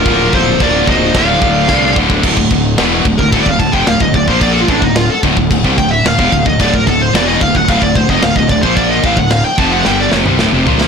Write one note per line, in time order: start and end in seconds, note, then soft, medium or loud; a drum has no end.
0.00 0.30 F4 medium
0.00 0.30 A#4 medium
0.06 0.32 D1 medium
0.06 0.60 A#2 medium
0.06 0.60 F3 loud
0.06 0.60 A#3 loud
0.06 kick loud
0.06 crash medium
0.33 0.59 D1 loud
0.33 0.60 A4 medium
0.33 0.62 C5 medium
0.33 kick medium
0.60 0.86 D1 medium
0.60 0.86 A#2 loud
0.60 0.87 F3 medium
0.60 0.88 A#3 loud
0.60 0.87 A#4 medium
0.60 0.89 D5 medium
0.60 kick loud
0.60 crash medium
0.87 1.14 D1 loud
0.87 1.13 A#2 medium
0.87 1.13 F3 medium
0.87 1.14 A#3 loud
0.87 1.14 C5 medium
0.87 1.17 D#5 medium
0.87 kick loud
1.15 1.41 D1 loud
1.15 1.68 D2 loud
1.15 1.69 A2 loud
1.15 1.69 D3 loud
1.15 1.94 D5 medium
1.15 1.93 F5 medium
1.15 kick loud
1.15 snare loud
1.15 crash medium
1.42 1.68 D1 loud
1.42 kick medium
1.68 1.95 C2 loud
1.68 1.96 D2 medium
1.68 1.97 A2 medium
1.68 1.98 D3 medium
1.68 kick medium
1.68 snare medium
1.96 2.22 D1 medium
1.96 2.23 D2 medium
1.96 2.23 A2 medium
1.96 2.23 D3 loud
1.96 kick loud
2.10 kick medium
2.23 2.36 D1 medium
2.23 2.37 D2 medium
2.23 2.37 A2 loud
2.23 kick loud
2.23 crash loud
2.23 crash medium
2.37 2.50 D1 medium
2.37 2.51 D2 medium
2.37 2.51 A2 medium
2.37 kick medium
2.51 2.76 D1 medium
2.51 2.73 D2 medium
2.51 2.73 A2 medium
2.51 kick medium
2.51 crash medium
2.78 3.04 E1 loud
2.78 3.05 E2 loud
2.78 3.05 B2 loud
2.78 3.05 E3 loud
2.78 snare loud
2.78 crash medium
3.05 3.18 D1 medium
3.05 3.19 D2 medium
3.05 3.19 A2 medium
3.05 kick loud
3.05 crash medium
3.18 3.32 D1 medium
3.18 3.31 D2 medium
3.18 3.31 A2 medium
3.18 3.32 A#4 medium
3.18 kick medium
3.32 3.46 D1 loud
3.32 3.45 D2 medium
3.32 3.45 A2 loud
3.32 3.41 A4 medium
3.32 kick loud
3.32 crash medium
3.40 3.50 D5 medium
3.46 3.59 D1 medium
3.46 3.58 D2 medium
3.46 3.59 A2 medium
3.46 3.59 F5 medium
3.46 kick medium
3.59 3.73 D1 medium
3.59 3.72 D2 medium
3.59 3.73 A2 medium
3.59 3.73 A5 loud
3.59 kick medium
3.59 crash medium
3.72 3.86 F1 medium
3.72 3.86 F2 medium
3.72 3.87 C3 loud
3.72 3.86 G5 medium
3.72 kick medium
3.87 4.00 D1 medium
3.87 3.99 D2 medium
3.87 4.00 A2 medium
3.87 4.01 F5 medium
3.87 snare loud
3.87 crash medium
4.00 4.13 D1 medium
4.00 4.14 D2 medium
4.00 4.14 A2 medium
4.00 4.14 D#5 medium
4.00 kick medium
4.14 4.27 D1 medium
4.14 4.28 D2 medium
4.14 4.28 A2 medium
4.14 4.28 D5 medium
4.14 kick medium
4.14 crash medium
4.28 4.66 A#1 loud
4.28 4.68 A#2 medium
4.28 4.68 F3 medium
4.28 4.69 A#3 loud
4.28 4.41 C5 medium
4.28 kick medium
4.41 4.50 D5 loud
4.41 kick loud
4.41 crash medium
4.51 4.60 A4 medium
4.61 4.69 F4 medium
4.68 4.82 A1 loud
4.68 4.82 A2 loud
4.68 4.82 E3 loud
4.68 4.82 D4 medium
4.68 kick loud
4.68 crash medium
4.82 5.08 D1 medium
4.82 5.04 D2 medium
4.82 5.05 A2 medium
4.82 4.96 D#4 medium
4.82 kick medium
4.96 5.09 F4 medium
4.96 snare loud
4.96 crash medium
5.10 5.18 A4 medium
5.23 5.36 D1 loud
5.23 5.36 D2 loud
5.23 5.37 A2 loud
5.23 kick loud
5.23 crash medium
5.37 5.50 D1 medium
5.37 5.50 D2 medium
5.37 5.50 A2 medium
5.37 kick medium
5.51 5.64 D1 medium
5.51 5.64 D2 medium
5.51 5.64 A2 medium
5.51 kick loud
5.51 crash medium
5.64 5.77 C2 loud
5.64 5.77 C3 loud
5.64 5.77 G3 loud
5.64 kick medium
5.77 6.03 D1 medium
5.77 5.99 D2 medium
5.77 6.00 A2 medium
5.77 5.91 G5 loud
5.77 kick medium
5.77 crash medium
5.92 6.06 E5 medium
6.04 6.18 D1 medium
6.04 6.17 D2 medium
6.04 6.18 A2 medium
6.04 6.47 F5 loud
6.04 snare loud
6.04 crash medium
6.18 6.31 E1 loud
6.18 6.31 E2 medium
6.18 6.32 B2 loud
6.18 kick loud
6.32 6.45 D1 medium
6.32 6.44 D2 medium
6.32 6.44 A2 medium
6.32 kick medium
6.32 crash medium
6.45 6.59 D1 medium
6.45 6.58 D2 medium
6.45 6.58 A2 medium
6.45 6.60 D#5 medium
6.45 kick medium
6.59 6.72 D1 medium
6.59 6.71 D2 loud
6.59 6.72 A2 loud
6.59 6.73 D5 medium
6.59 kick loud
6.59 crash medium
6.72 6.86 D1 medium
6.72 6.85 D2 medium
6.72 6.85 A2 medium
6.72 6.87 A#4 medium
6.72 kick medium
6.86 7.12 D1 medium
6.86 7.08 D2 medium
6.86 7.08 A2 medium
6.86 7.00 A4 medium
6.86 kick medium
6.86 crash medium
7.02 7.14 C5 medium
7.13 7.39 E1 loud
7.13 7.40 E2 medium
7.13 7.40 B2 loud
7.13 7.41 E3 loud
7.13 7.27 D5 medium
7.13 snare loud
7.13 crash medium
7.27 7.41 D#5 medium
7.41 7.54 D1 medium
7.41 7.54 D2 medium
7.41 7.55 A2 medium
7.41 7.56 F5 loud
7.41 kick medium
7.41 crash medium
7.55 7.67 D1 medium
7.55 7.69 D2 medium
7.55 7.68 A2 medium
7.55 7.68 F#5 loud
7.55 kick medium
7.68 7.81 D1 loud
7.68 7.81 D2 loud
7.68 7.82 A2 loud
7.68 7.82 F5 medium
7.68 kick loud
7.68 crash medium
7.82 7.95 D1 medium
7.82 7.95 D2 medium
7.82 7.95 A2 medium
7.82 7.95 D5 medium
7.82 kick medium
7.95 8.08 D1 medium
7.95 8.09 D2 medium
7.95 8.10 A2 medium
7.95 8.09 C5 loud
7.95 kick loud
7.95 crash medium
8.09 8.22 F1 medium
8.09 8.22 F2 medium
8.09 8.23 C3 loud
8.09 8.22 D#5 medium
8.09 kick medium
8.22 8.35 D1 medium
8.22 8.36 D2 medium
8.22 8.37 A2 medium
8.22 8.36 F5 loud
8.22 snare loud
8.22 crash medium
8.36 8.49 D1 medium
8.36 8.50 D2 medium
8.36 8.50 A2 medium
8.36 8.49 D#5 medium
8.36 kick medium
8.49 8.62 D1 medium
8.49 8.63 D2 medium
8.49 8.63 A2 medium
8.49 8.62 D5 loud
8.49 kick medium
8.49 crash medium
8.62 9.01 A#1 loud
8.62 9.03 A#2 medium
8.62 9.03 F3 medium
8.62 9.04 A#3 loud
8.62 8.76 C5 medium
8.62 kick medium
8.76 8.90 D5 medium
8.76 kick loud
8.76 crash medium
8.90 9.03 D#5 medium
9.04 9.17 A1 medium
9.04 9.17 A2 loud
9.04 9.17 E3 loud
9.04 9.18 F5 loud
9.04 kick loud
9.04 crash medium
9.17 9.43 D1 medium
9.17 9.40 D2 medium
9.17 9.40 A2 medium
9.17 9.31 F#5 loud
9.17 kick medium
9.31 9.44 F5 medium
9.31 snare loud
9.31 crash medium
9.45 9.58 G5 medium
9.58 9.83 F1 loud
9.58 9.85 F2 medium
9.58 9.85 C3 medium
9.58 9.85 F3 loud
9.58 9.71 A5 loud
9.58 kick loud
9.58 crash medium
9.72 9.85 F#5 medium
9.85 10.11 G1 loud
9.85 10.12 G2 loud
9.85 10.12 D3 loud
9.85 10.12 G3 loud
9.85 9.99 G5 loud
9.85 snare medium
10.01 10.08 D5 medium
10.12 10.25 F1 loud
10.12 10.25 F2 loud
10.12 10.25 C3 loud
10.12 snare medium
10.25 10.38 C2 medium
10.25 10.38 C3 medium
10.25 10.39 G3 loud
10.25 mid tom medium
10.39 10.51 D1 medium
10.39 10.52 D2 medium
10.39 10.52 A2 loud
10.39 snare medium
10.52 10.65 F1 loud
10.52 10.66 F2 medium
10.52 10.65 C3 loud
10.66 10.88 A#1 loud
10.66 10.88 A#2 loud
10.66 10.88 F3 medium
10.66 10.88 A#3 loud
10.66 floor tom loud
10.81 snare medium